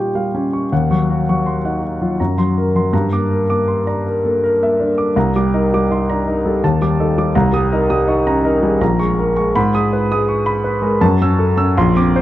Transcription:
0.00 0.68 A#2 medium
0.00 0.15 G3 soft
0.00 0.74 D#4 soft
0.00 0.74 F4 soft
0.00 0.35 G4 soft
0.00 0.74 G5 medium
0.00 0.74 C6 soft
0.00 0.53 C#6 soft
0.15 0.45 G3 soft
0.15 0.45 F5 soft
0.35 0.65 C#4 soft
0.35 0.65 G4 soft
0.53 0.72 C#6 soft
0.72 2.16 D#2 medium
0.72 1.03 F#5 medium
0.91 1.21 F#3 soft
0.91 1.21 C#6 soft
1.10 1.40 F#4 soft
1.29 1.58 F#3 soft
1.29 1.58 C#6 soft
1.46 1.65 C6 soft
1.65 1.83 D#4 soft
1.65 1.94 F#5 soft
1.83 2.12 F#4 soft
2.01 2.19 F#3 soft
2.01 2.20 F4 soft
2.20 2.91 F#2 medium
2.20 2.49 A#5 soft
2.38 2.67 F#3 soft
2.38 2.67 C6 soft
2.58 2.86 A#4 soft
2.76 2.93 F#3 soft
2.76 2.93 C6 soft
2.93 5.12 G2 medium
2.93 3.23 A#5 medium
3.13 3.42 A#3 soft
3.13 3.42 D6 soft
3.31 3.61 A#4 soft
3.50 3.80 A#3 soft
3.50 3.80 D6 medium
3.68 3.87 C6 soft
3.87 4.05 D4 soft
3.87 4.16 A#5 soft
4.07 4.35 A#4 soft
4.25 4.53 A#3 soft
4.25 4.42 A4 soft
4.44 4.72 A#4 medium
4.63 4.91 A#3 soft
4.63 4.91 E5 medium
4.80 5.09 D4 soft
4.80 5.09 A#4 soft
4.98 5.16 D6 soft
5.16 6.58 C2 medium
5.16 5.46 A#5 medium
5.36 5.65 G3 soft
5.36 5.65 D6 medium
5.54 5.83 D#4 medium
5.54 5.83 A#4 medium
5.74 6.02 G3 medium
5.74 6.02 D6 medium
5.91 6.19 D#4 soft
5.91 6.09 C6 soft
6.10 6.27 D4 soft
6.10 6.37 A#5 medium
6.27 6.55 D#4 soft
6.27 6.55 A#4 soft
6.45 6.63 G3 soft
6.45 6.63 A4 soft
6.64 7.34 D#2 medium
6.64 6.92 A5 medium
6.81 7.10 G3 soft
6.81 7.10 D6 medium
7.00 7.28 D#4 soft
7.00 7.28 A4 medium
7.18 7.35 G3 medium
7.18 7.35 D6 medium
7.35 8.77 C2 medium
7.35 7.64 A#5 medium
7.53 7.82 G3 medium
7.53 7.82 D#6 medium
7.72 8.01 D#4 medium
7.72 8.01 A#4 medium
7.90 8.19 G3 medium
7.90 8.19 D#6 medium
8.08 8.37 D#4 medium
8.08 8.26 C#6 soft
8.27 8.45 C#4 soft
8.27 8.56 A#5 medium
8.45 8.74 D#4 medium
8.45 8.74 A#4 medium
8.63 8.81 G3 medium
8.63 8.81 G#4 soft
8.81 9.53 A#1 medium
8.81 9.11 A#5 medium
8.99 9.30 G#3 medium
8.99 9.29 C#6 medium
9.19 9.48 A#4 medium
9.36 9.55 G#3 medium
9.36 9.55 C#6 medium
9.56 10.97 G#2 medium
9.56 9.84 B5 medium
9.74 10.02 G#3 medium
9.74 10.03 D#6 medium
9.93 10.21 B4 medium
10.12 10.39 G#3 medium
10.12 10.39 D#6 medium
10.29 10.46 C#6 medium
10.46 10.75 B5 medium
10.64 10.94 B4 medium
10.82 11.00 G#3 medium
10.82 11.01 A#4 medium
11.01 11.74 F#2 medium
11.01 11.31 A5 medium
11.22 11.51 C#4 medium
11.22 11.51 E6 medium
11.39 11.69 A4 medium
11.57 11.77 C#4 medium
11.57 11.77 E6 medium
11.77 12.22 A#1 medium
11.77 12.08 C6 medium
11.97 12.22 C4 medium
11.97 12.22 D6 medium
12.16 12.22 C5 medium

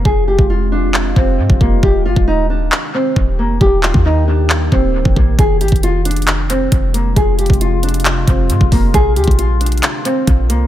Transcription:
0.00 1.80 C3 medium
0.00 1.79 G#3 medium
0.00 1.79 F4 medium
0.05 0.37 F1 loud
0.05 0.23 G#4 loud
0.05 kick loud
0.28 0.45 G4 medium
0.39 1.13 F1 loud
0.39 kick medium
0.50 0.68 F4 medium
0.72 1.14 D4 medium
0.94 clap loud
1.16 1.40 F1 loud
1.16 1.58 C4 medium
1.16 kick medium
1.39 1.49 G#2 loud
1.50 1.60 F1 loud
1.50 kick medium
1.61 1.82 F1 loud
1.61 1.79 A#3 medium
1.61 kick medium
1.83 2.07 D#1 loud
1.83 5.35 D#3 medium
1.83 5.35 A#3 medium
1.83 2.01 G4 loud
1.83 5.35 G4 medium
1.83 kick loud
2.05 2.16 G1 loud
2.05 2.23 F4 medium
2.16 2.70 D#1 loud
2.16 kick medium
2.28 2.45 D#4 medium
2.50 2.92 D4 medium
2.72 clap loud
2.94 3.36 C4 medium
3.16 3.40 D#1 loud
3.16 kick loud
3.39 3.60 F1 loud
3.39 3.56 A#3 medium
3.61 3.93 D#1 loud
3.61 3.79 G4 loud
3.61 kick loud
3.83 4.01 F4 medium
3.83 clap loud
3.94 4.69 D#2 loud
3.94 kick medium
4.05 4.23 D#4 medium
4.28 4.69 D4 medium
4.50 clap loud
4.72 4.96 D#1 loud
4.72 5.14 C4 medium
4.72 kick medium
4.94 5.05 D1 loud
5.05 5.16 D#1 loud
5.05 kick medium
5.16 5.38 A#1 loud
5.16 5.34 A#3 medium
5.16 kick medium
5.39 5.62 F1 loud
5.39 8.91 C3 medium
5.39 8.91 G#3 medium
5.39 10.67 F4 medium
5.39 5.57 G#4 loud
5.39 kick loud
5.39 closed hi-hat medium
5.61 5.71 G#1 loud
5.61 5.79 G4 medium
5.61 closed hi-hat medium
5.68 6.68 F1 loud
5.68 kick medium
5.68 closed hi-hat medium
5.76 closed hi-hat medium
5.83 6.01 F4 medium
5.83 closed hi-hat medium
6.05 6.47 D4 medium
6.05 closed hi-hat medium
6.11 closed hi-hat medium
6.16 closed hi-hat medium
6.22 closed hi-hat soft
6.27 clap loud
6.27 closed hi-hat medium
6.50 6.92 C4 medium
6.50 closed hi-hat medium
6.72 7.15 F1 loud
6.72 kick loud
6.72 closed hi-hat medium
6.94 7.12 A#3 medium
6.94 closed hi-hat medium
7.16 7.48 F1 loud
7.16 7.34 G#4 medium
7.16 kick loud
7.16 closed hi-hat medium
7.39 7.56 G4 medium
7.39 closed hi-hat medium
7.46 8.24 F1 loud
7.46 kick medium
7.46 closed hi-hat medium
7.53 closed hi-hat medium
7.61 7.79 F4 medium
7.61 closed hi-hat medium
7.83 8.25 D4 medium
7.83 closed hi-hat medium
7.89 closed hi-hat medium
7.94 closed hi-hat medium
8.00 closed hi-hat soft
8.05 clap loud
8.05 closed hi-hat medium
8.27 8.51 F1 loud
8.27 8.69 C4 medium
8.27 kick medium
8.27 closed hi-hat medium
8.50 8.60 G#2 loud
8.50 closed hi-hat medium
8.61 8.72 F1 loud
8.61 kick medium
8.72 8.93 F1 loud
8.72 8.90 A#3 medium
8.72 kick medium
8.72 open hi-hat medium
8.94 9.18 A#1 loud
8.94 10.67 D3 medium
8.94 10.67 A#3 medium
8.94 9.12 G#4 loud
8.94 kick loud
8.94 closed hi-hat medium
9.16 9.27 D2 loud
9.16 9.34 G4 medium
9.16 closed hi-hat medium
9.24 9.81 A#1 loud
9.24 kick medium
9.24 closed hi-hat medium
9.31 closed hi-hat medium
9.39 9.56 F4 medium
9.39 closed hi-hat loud
9.61 10.03 D4 medium
9.61 closed hi-hat medium
9.66 closed hi-hat medium
9.72 closed hi-hat medium
9.78 closed hi-hat soft
9.83 clap loud
9.83 closed hi-hat medium
10.05 10.47 C4 medium
10.05 closed hi-hat medium
10.27 10.51 A#1 loud
10.27 kick loud
10.27 closed hi-hat medium
10.50 10.67 C2 loud
10.50 10.67 A#3 medium
10.50 closed hi-hat medium

